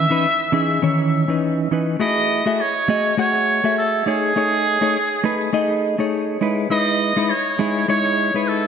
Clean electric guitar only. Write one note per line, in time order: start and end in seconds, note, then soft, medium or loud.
0.10 0.25 E3 medium
0.10 0.25 C#4 medium
0.10 0.26 D#4 medium
0.10 0.26 B4 loud
0.52 0.79 E3 medium
0.52 0.79 C#4 medium
0.52 0.79 D#4 medium
0.52 0.80 G#4 medium
0.82 1.25 D#3 medium
0.82 1.24 E3 medium
0.82 1.24 C#4 medium
0.82 1.25 C#5 loud
1.28 1.67 E3 medium
1.28 1.67 C#4 medium
1.28 1.68 D#4 medium
1.28 1.68 B4 medium
1.71 1.97 E3 medium
1.71 1.97 C#4 medium
1.71 1.98 D#4 medium
1.71 1.98 B4 medium
1.99 2.42 A3 medium
1.99 2.43 E4 loud
1.99 2.42 F#4 medium
1.99 2.42 G#4 medium
2.46 2.61 A3 medium
2.46 2.61 F#4 medium
2.46 2.61 G#4 medium
2.46 2.61 E5 loud
2.88 3.15 A3 medium
2.88 3.15 F#4 medium
2.88 3.15 G#4 medium
2.88 3.15 D#5 medium
3.17 3.60 A3 loud
3.17 3.60 F#4 medium
3.17 3.60 G#4 medium
3.17 3.60 F#5 loud
3.64 4.03 A3 medium
3.64 4.03 F#4 medium
3.64 4.03 G#4 medium
3.64 4.04 E5 medium
4.06 4.32 A3 medium
4.06 4.33 D#4 medium
4.06 4.33 G#4 medium
4.06 4.33 C#5 medium
4.36 4.78 A3 medium
4.36 4.78 D#4 medium
4.36 4.78 G#4 medium
4.36 4.78 C#5 loud
4.81 4.96 A3 loud
4.81 4.96 D#4 medium
4.81 4.97 G#4 medium
4.81 4.97 C#5 loud
5.24 5.50 A3 medium
5.24 5.50 D#4 medium
5.24 5.51 G#4 medium
5.24 5.51 B4 medium
5.53 5.95 A3 loud
5.53 5.95 D#4 medium
5.53 5.95 G#4 loud
5.53 5.96 D#5 loud
5.98 6.38 A3 medium
5.98 6.38 D#4 medium
5.98 6.38 G#4 medium
5.98 6.39 C#5 medium
6.41 6.67 G#3 medium
6.41 6.68 D#4 medium
6.41 6.68 E4 medium
6.41 6.68 B4 medium
6.70 7.12 G#3 medium
6.70 7.13 D#4 medium
6.70 7.13 E4 medium
6.70 7.13 B4 medium
7.16 7.31 G#3 medium
7.16 7.31 D#4 medium
7.16 7.32 E4 medium
7.16 7.32 B4 loud
7.59 7.85 G#3 medium
7.59 7.85 D#4 medium
7.59 7.86 E4 medium
7.59 7.86 G#4 medium
7.88 8.30 G#3 loud
7.88 8.30 D#4 medium
7.88 8.31 E4 medium
7.88 8.31 C#5 loud
8.34 8.67 G#3 medium
8.34 8.67 D#4 medium
8.34 8.67 E4 medium
8.34 8.67 B4 medium